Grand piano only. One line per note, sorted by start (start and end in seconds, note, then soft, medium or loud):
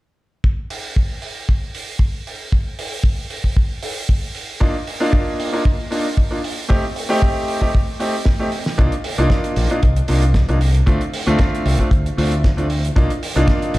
4.60 4.74 A#3 medium
4.60 4.74 D4 medium
4.60 4.74 D#4 medium
4.60 4.74 F4 loud
5.00 5.49 A#3 medium
5.00 5.50 D4 medium
5.00 5.50 D#4 medium
5.00 5.50 F4 loud
5.52 5.60 A#3 medium
5.52 5.60 D4 medium
5.52 5.60 D#4 medium
5.52 5.61 F4 medium
5.91 6.04 A#3 medium
5.91 6.04 D4 medium
5.91 6.05 D#4 medium
5.91 6.05 F4 medium
6.31 6.38 A#3 medium
6.31 6.39 D4 medium
6.31 6.39 D#4 medium
6.31 6.39 F4 medium
6.69 6.82 A3 medium
6.69 6.83 C4 medium
6.69 6.83 D#4 medium
6.69 6.83 G4 loud
7.09 7.58 A3 medium
7.09 7.58 C4 medium
7.09 7.59 D#4 medium
7.09 7.59 G4 loud
7.61 7.69 A3 medium
7.61 7.69 C4 medium
7.61 7.69 D#4 medium
7.61 7.69 G4 medium
7.99 8.13 A3 medium
7.99 8.13 C4 medium
7.99 8.13 D#4 medium
7.99 8.14 G4 medium
8.39 8.47 A3 medium
8.39 8.47 C4 medium
8.39 8.48 D#4 medium
8.39 8.48 G4 medium
8.78 8.91 A#3 medium
8.78 8.92 D4 medium
8.78 8.92 D#4 medium
8.78 8.92 F4 loud
9.18 9.67 A#3 medium
9.18 9.67 D4 medium
9.18 9.67 D#4 medium
9.18 9.67 F4 loud
9.70 9.78 A#3 medium
9.70 9.78 D4 medium
9.70 9.78 D#4 medium
9.70 9.78 F4 medium
10.08 10.22 A#3 medium
10.08 10.22 D4 medium
10.08 10.22 D#4 medium
10.08 10.22 F4 medium
10.48 10.56 A#3 medium
10.48 10.56 D4 medium
10.48 10.56 D#4 medium
10.48 10.56 F4 medium
10.86 11.00 A3 medium
10.86 11.00 C4 medium
10.86 11.00 D4 medium
10.86 11.00 F4 loud
11.27 11.76 A3 medium
11.27 11.76 C4 medium
11.27 11.76 D4 medium
11.27 11.76 F4 loud
11.79 11.86 A3 medium
11.79 11.87 C4 medium
11.79 11.87 D4 medium
11.79 11.87 F4 medium
12.17 12.31 A3 medium
12.17 12.31 C4 medium
12.17 12.31 D4 medium
12.17 12.31 F4 medium
12.57 12.65 A3 medium
12.57 12.65 C4 medium
12.57 12.65 D4 medium
12.57 12.65 F4 medium
12.96 13.09 A#3 loud
12.96 13.09 D4 medium
12.96 13.09 D#4 medium
12.96 13.09 F4 loud
13.36 13.79 A#3 medium
13.36 13.79 D4 medium
13.36 13.79 D#4 medium
13.36 13.79 F4 loud